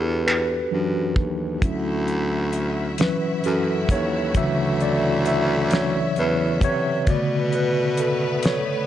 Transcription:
Already playing: baritone saxophone E2, tine electric piano B3 D4 F#4 G4 A4 B4
0.27 tine electric piano B4, finger snap
0.71 baritone saxophone F#2, tine electric piano E3 F#3 D4
1.16 baritone saxophone D#2, kick
1.62 baritone saxophone D2, tine electric piano F#3 C#4 E4, string section E4 F#4 E5, kick, closed hi-hat
2.08 closed hi-hat
2.53 closed hi-hat
2.98 tine electric piano E3 F#3 C#4 B4, snare, closed hi-hat
3.44 baritone saxophone F#2, tine electric piano A4, closed hi-hat
3.89 baritone saxophone D#2, tine electric piano C#5, kick, closed hi-hat
4.34 baritone saxophone D2, tine electric piano C#3 E3 F#3 E5, kick, closed hi-hat
4.80 tine electric piano D5, closed hi-hat
5.25 tine electric piano E5, closed hi-hat
5.71 tine electric piano E3 F#3 C#4 C#5, snare, closed hi-hat
6.16 baritone saxophone E2, tine electric piano B4, closed hi-hat
6.61 baritone saxophone C3, tine electric piano C#5, kick, closed hi-hat
7.07 baritone saxophone B2, tine electric piano C#3 D3 A3 D5, string section A3 B3 B4, kick, closed hi-hat
7.53 tine electric piano B4, closed hi-hat
7.97 tine electric piano A4, closed hi-hat
8.43 tine electric piano C#5, snare, closed hi-hat

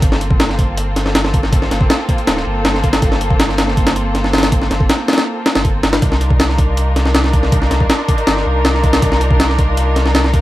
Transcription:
0.02 sub bass G1, string section A#3 C4 F4 A4, kick, closed hi-hat
0.12 snare
0.21 closed hi-hat
0.31 kick
0.40 snare, closed hi-hat
0.49 snare
0.59 kick, closed hi-hat
0.77 closed hi-hat
0.96 snare, closed hi-hat
1.06 snare
1.15 snare, closed hi-hat
1.25 snare
1.34 kick, closed hi-hat
1.43 snare
1.52 kick, closed hi-hat
1.62 snare
1.71 sub bass G1, snare, closed hi-hat
1.81 kick
1.90 snare, closed hi-hat
2.09 kick, closed hi-hat
2.18 closed hi-hat
2.27 sub bass D1, snare, closed hi-hat
2.37 snare
2.46 sub bass G1
2.65 snare, closed hi-hat
2.75 snare
2.84 kick, closed hi-hat
2.93 snare, closed hi-hat
3.02 sub bass G1, kick, closed hi-hat
3.12 snare
3.21 closed hi-hat
3.31 kick
3.40 snare, closed hi-hat
3.49 snare
3.58 snare, closed hi-hat
3.68 snare
3.77 kick, closed hi-hat
3.87 snare, closed hi-hat
3.96 closed hi-hat
4.15 snare, closed hi-hat
4.24 snare
4.33 snare, closed hi-hat
4.38 snare, closed hi-hat
4.43 snare, closed hi-hat
4.52 kick, closed hi-hat
4.62 snare
4.71 sub bass G1, snare, closed hi-hat
4.80 kick
4.90 snare, closed hi-hat
5.08 snare, closed hi-hat
5.13 snare, closed hi-hat
5.18 snare, closed hi-hat
5.46 snare, closed hi-hat
5.55 sub bass G1, snare, closed hi-hat
5.65 kick, closed hi-hat
5.83 sub bass G1, snare, closed hi-hat
5.93 snare, closed hi-hat
6.02 sub bass C2, string section D4 D#4 F4 A#4, kick, closed hi-hat
6.12 snare
6.21 closed hi-hat
6.30 kick
6.40 snare, closed hi-hat
6.49 snare
6.58 kick, closed hi-hat
6.77 closed hi-hat
6.96 snare, closed hi-hat
7.06 snare
7.15 snare, closed hi-hat
7.24 snare
7.33 kick, closed hi-hat
7.43 snare
7.52 kick, closed hi-hat
7.62 snare
7.71 sub bass C2, snare, closed hi-hat
7.80 kick
7.90 snare, closed hi-hat
8.08 kick, closed hi-hat
8.18 closed hi-hat
8.27 sub bass G1, snare, closed hi-hat
8.37 snare
8.46 sub bass C2
8.65 snare, closed hi-hat
8.74 snare
8.84 kick, closed hi-hat
8.93 snare, closed hi-hat
9.02 sub bass C2, kick, closed hi-hat
9.12 snare
9.21 closed hi-hat
9.31 kick
9.40 snare, closed hi-hat
9.49 snare
9.59 kick, closed hi-hat
9.77 closed hi-hat
9.96 snare, closed hi-hat
10.06 snare
10.15 snare, closed hi-hat
10.24 snare
10.34 kick, closed hi-hat

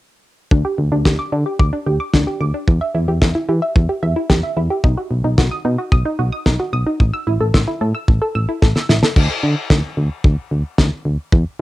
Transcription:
0.51 fm bass D2, synth pluck D4, kick
0.65 synth pluck G4
0.78 fm bass D2
0.92 fm bass D2, synth pluck D4
1.05 fm bass D2, synth pluck G4, kick, snare
1.19 synth pluck D6
1.32 fm bass D3, synth pluck D4
1.46 synth pluck G4
1.59 fm bass D2, synth pluck D6, kick
1.73 synth pluck D4
1.86 fm bass D2, synth pluck G4
2.00 synth pluck D6
2.13 fm bass D2, synth pluck D4, kick, snare
2.27 synth pluck G4
2.41 fm bass D2, synth pluck D6
2.54 synth pluck D4
2.68 fm bass E2, kick
2.81 synth pluck E5
2.95 fm bass E2, synth pluck E4
3.08 fm bass E2, synth pluck G4
3.22 fm bass E2, synth pluck E5, kick, snare
3.35 synth pluck E4
3.49 fm bass E3, synth pluck G4
3.62 synth pluck E5
3.76 fm bass E2, kick
3.89 synth pluck G4
4.03 fm bass E2, synth pluck E5
4.16 synth pluck E4
4.30 fm bass E2, synth pluck G4, kick, snare
4.43 synth pluck E5
4.57 fm bass E2, synth pluck E4
4.70 synth pluck G4
4.84 fm bass B1, synth pluck D#4, kick
4.97 synth pluck F#4
5.11 fm bass B1
5.24 fm bass B1, synth pluck D#4
5.38 fm bass B1, synth pluck F#4, kick, snare
5.51 synth pluck D#6
5.65 fm bass B2, synth pluck D#4
5.78 synth pluck F#4
5.92 fm bass B1, synth pluck D#6, kick
6.05 synth pluck D#4
6.19 fm bass B1, synth pluck F#4
6.32 synth pluck D#6
6.46 fm bass B1, synth pluck D#4, kick, snare
6.60 synth pluck F#4
6.73 fm bass B1, synth pluck D#6
6.86 synth pluck D#4
7.00 fm bass A1, kick
7.13 synth pluck E6
7.27 fm bass A1, synth pluck E4
7.40 fm bass A1, synth pluck A4
7.54 fm bass A1, synth pluck E6, kick, snare
7.68 synth pluck E4
7.81 fm bass A2, synth pluck A4
7.95 synth pluck E6
8.08 fm bass A1, kick
8.22 synth pluck A4
8.35 fm bass A1, synth pluck E6
8.49 synth pluck E4
8.62 fm bass A1, synth pluck A4, kick, snare
8.76 synth pluck E6, snare
8.89 fm bass A1, synth pluck E4, snare
9.03 synth pluck A4, snare
9.16 fm bass D2, kick, crash
9.43 fm bass D3
9.70 fm bass D2, kick, snare
9.97 fm bass D2
10.24 fm bass D2, kick
10.51 fm bass D2
10.78 fm bass D2, kick, snare
11.05 fm bass D2
11.32 fm bass E2, kick

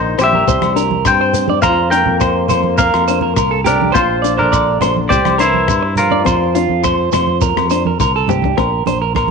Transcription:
Already playing: fingered electric bass A#1, trombone D#3, clean electric guitar D#4 C5
0.18 fingered electric bass A#1, trombone G3, steel-string acoustic guitar C4, clean electric guitar G4 C5, cross-stick, closed hi-hat, low agogo, shekere
0.24 clean electric guitar E5
0.33 clean electric guitar A#4, high conga
0.48 fingered electric bass C2, steel-string acoustic guitar C4, clean electric guitar C5, kick, shekere
0.61 fingered electric bass C2, cross-stick, high conga, low agogo
0.76 steel-string acoustic guitar D4, clean electric guitar A#4, closed hi-hat, shekere
0.91 high conga
1.05 fingered electric bass G2, clean electric guitar C5 G5, kick, cross-stick, low agogo, shekere
1.09 trombone C4
1.21 clean electric guitar C5
1.33 steel-string acoustic guitar C4, closed hi-hat, low conga, shekere
1.48 steel-string acoustic guitar D4, clean electric guitar D5, high conga
1.62 fingered electric bass F2, steel-string acoustic guitar C4, clean electric guitar C5 F5 A#5, kick, cross-stick, low agogo, shekere
1.67 trombone F4
1.90 steel-string acoustic guitar D4, clean electric guitar A#4 G5, closed hi-hat, shekere
1.96 trombone A#3
2.06 fingered electric bass F2, low conga
2.20 clean electric guitar C5, kick, cross-stick, low agogo, shekere
2.48 fingered electric bass F2, steel-string acoustic guitar C4, clean electric guitar C5, closed hi-hat, low conga, low agogo, shekere
2.64 high conga
2.78 trombone A#3, steel-string acoustic guitar C4, clean electric guitar A#4 F5, kick, shekere
2.94 fingered electric bass F2, cross-stick, low agogo
3.08 steel-string acoustic guitar D4, clean electric guitar C5, closed hi-hat, shekere
3.21 clean electric guitar A#4, high conga
3.36 fingered electric bass C2, clean electric guitar A#4, kick, cross-stick, low agogo, shekere
3.51 clean electric guitar A4
3.64 steel-string acoustic guitar C4, clean electric guitar D4 G4 A#4, closed hi-hat, low conga, shekere
3.69 trombone D3
3.81 steel-string acoustic guitar D4, high conga
3.92 fingered electric bass A#1, trombone F3, steel-string acoustic guitar C4, clean electric guitar F4 C5, kick, cross-stick, low agogo, shekere
4.22 steel-string acoustic guitar D4, clean electric guitar D5, closed hi-hat, shekere
4.38 fingered electric bass A#1, trombone D3, clean electric guitar D4 A#4 C5, low conga
4.52 clean electric guitar D5, kick, cross-stick, low agogo, shekere
4.81 fingered electric bass A#1, steel-string acoustic guitar C4, clean electric guitar C5, cross-stick, closed hi-hat, low conga, low agogo, shekere
4.97 high conga
5.09 fingered electric bass C2, trombone G3, steel-string acoustic guitar C4, clean electric guitar G4 C5 D5, kick, shekere
5.25 fingered electric bass C2, cross-stick, high conga, low agogo
5.38 trombone E3, steel-string acoustic guitar D4, clean electric guitar E4 A#4 C5, closed hi-hat, shekere
5.54 high conga
5.68 fingered electric bass G2, kick, cross-stick, low agogo, shekere
5.83 muted clean electric guitar stroke
5.96 trombone F3, clean electric guitar F4 A#4, closed hi-hat, low conga, shekere
6.11 steel-string acoustic guitar D4, clean electric guitar D5, high conga
6.25 fingered electric bass F2, steel-string acoustic guitar C4, clean electric guitar C5, kick, cross-stick, low agogo, shekere
6.55 steel-string acoustic guitar D4, clean electric guitar F4, closed hi-hat, shekere
6.69 fingered electric bass F2, high conga
6.83 clean electric guitar C5, kick, cross-stick, low agogo, shekere
7.12 fingered electric bass F2, steel-string acoustic guitar C4, clean electric guitar C5, cross-stick, closed hi-hat, low conga, low agogo, shekere
7.27 high conga
7.41 clean electric guitar A#4, muted steel-string acoustic guitar stroke, kick, shekere
7.56 fingered electric bass F2, cross-stick, high conga, low agogo
7.70 steel-string acoustic guitar D4, clean electric guitar C5, closed hi-hat, shekere
7.85 clean electric guitar A#4, high conga
8.00 fingered electric bass C2, clean electric guitar A#4, kick, high tom, low agogo, shekere
8.16 clean electric guitar A4
8.28 steel-string acoustic guitar C4, clean electric guitar G4, mid tom, low conga, shekere
8.42 steel-string acoustic guitar D4, kick, high conga
8.57 fingered electric bass A#1, steel-string acoustic guitar C4, clean electric guitar A#4, kick, cross-stick, low agogo
8.86 fingered electric bass A#1, steel-string acoustic guitar D4, clean electric guitar C5, closed hi-hat, high conga
9.02 clean electric guitar A#4
9.15 clean electric guitar A#4, kick, cross-stick, high conga, low agogo

